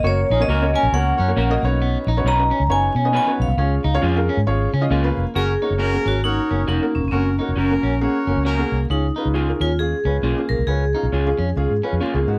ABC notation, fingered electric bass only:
X:1
M:4/4
L:1/16
Q:"Swing" 1/4=135
K:F#
V:1 name="Fingered electric bass" clef=bass
F,,,2 A,,,2 C,,3 A,,, C,,2 F,,2 A,,,2 B,,,2- | B,,,2 A,,,2 B,,,3 C,, F,,,2 B,,3 z B,,, ^B,,, | C,,2 C,,2 E,,3 G,, G,,,2 C,2 C,,2 E,,, z | F,,,2 z F,,,3 G,,,4 F,,,2 E,,, z =E,,, ^E,,, |
F,,,3 E,,, F,,,2 A,,,3 z F,,, C,,3 ^B,,,2 | C,,2 z C,,3 D,,4 C,,2 B,,, z B,,, ^B,,, | C,,3 B,,, C,,2 E,,2 C,, G,, z E,, z C,, G,,2 |]